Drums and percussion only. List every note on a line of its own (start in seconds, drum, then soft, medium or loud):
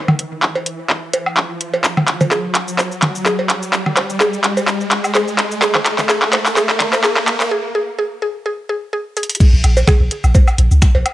0.08 mid tom medium
0.08 low woodblock medium
0.19 closed hi-hat loud
0.43 kick loud
0.43 clap medium
0.55 cowbell medium
0.66 closed hi-hat medium
0.90 kick loud
0.90 clap medium
1.13 closed hi-hat medium
1.13 cowbell medium
1.26 low woodblock medium
1.37 kick loud
1.37 clap medium
1.61 closed hi-hat medium
1.74 cowbell medium
1.84 kick loud
1.84 clap medium
1.84 shaker medium
1.97 mid tom medium
1.97 low woodblock medium
2.08 clap medium
2.08 closed hi-hat medium
2.21 mid tom medium
2.21 cowbell medium
2.21 shaker soft
2.32 kick loud
2.32 clap medium
2.32 shaker soft
2.55 clap medium
2.55 closed hi-hat medium
2.68 shaker soft
2.79 kick loud
2.79 clap medium
2.79 cowbell medium
2.79 shaker soft
2.92 shaker soft
3.02 clap medium
3.02 closed hi-hat loud
3.02 mid tom medium
3.15 shaker soft
3.26 kick loud
3.26 clap medium
3.26 shaker medium
3.39 cowbell medium
3.50 clap medium
3.50 closed hi-hat medium
3.63 shaker soft
3.73 kick loud
3.73 clap medium
3.73 shaker medium
3.86 mid tom medium
3.86 low woodblock medium
3.97 clap medium
3.97 closed hi-hat medium
3.97 cowbell medium
4.10 shaker soft
4.21 kick loud
4.21 clap medium
4.21 shaker medium
4.33 shaker soft
4.44 clap medium
4.44 closed hi-hat medium
4.57 cowbell medium
4.57 shaker soft
4.68 kick loud
4.68 clap medium
4.68 shaker medium
4.81 shaker soft
4.91 clap medium
4.91 closed hi-hat medium
5.04 low woodblock medium
5.04 shaker soft
5.15 kick loud
5.15 clap medium
5.15 cowbell medium
5.15 shaker medium
5.28 shaker soft
5.39 clap medium
5.39 closed hi-hat medium
5.51 shaker soft
5.62 kick loud
5.62 clap loud
5.62 shaker medium
5.75 clap medium
5.75 mid tom medium
5.75 cowbell medium
5.75 low woodblock medium
5.86 clap loud
5.86 closed hi-hat medium
5.99 clap medium
5.99 mid tom medium
5.99 shaker soft
6.09 kick loud
6.09 clap medium
6.09 shaker medium
6.22 clap medium
6.33 clap loud
6.33 closed hi-hat medium
6.33 cowbell medium
6.46 clap medium
6.46 shaker soft
6.57 kick loud
6.57 clap medium
6.57 shaker medium
6.70 clap medium
6.70 shaker soft
6.80 clap loud
6.80 closed hi-hat medium
6.80 mid tom medium
6.93 clap medium
6.93 cowbell medium
6.93 shaker soft
7.04 kick loud
7.04 clap loud
7.04 shaker medium
7.17 clap medium
7.28 clap loud
7.28 closed hi-hat medium
7.40 clap medium
7.40 shaker soft
9.17 closed hi-hat medium
9.23 closed hi-hat medium
9.29 closed hi-hat medium
9.35 closed hi-hat medium
9.40 kick loud
9.40 crash loud
9.40 shaker medium
9.64 closed hi-hat medium
9.64 low woodblock soft
9.77 cowbell medium
9.77 shaker soft
9.88 finger snap medium
9.88 kick loud
9.88 mid tom medium
9.88 low woodblock medium
9.88 shaker medium
10.11 closed hi-hat medium
10.24 low woodblock soft
10.24 shaker soft
10.35 kick loud
10.35 cowbell medium
10.35 shaker medium
10.48 low woodblock medium
10.48 shaker soft
10.58 closed hi-hat medium
10.71 shaker soft
10.82 finger snap loud
10.82 kick loud
10.82 low woodblock soft
10.82 shaker medium
10.95 cowbell medium
11.06 closed hi-hat medium
11.06 low woodblock medium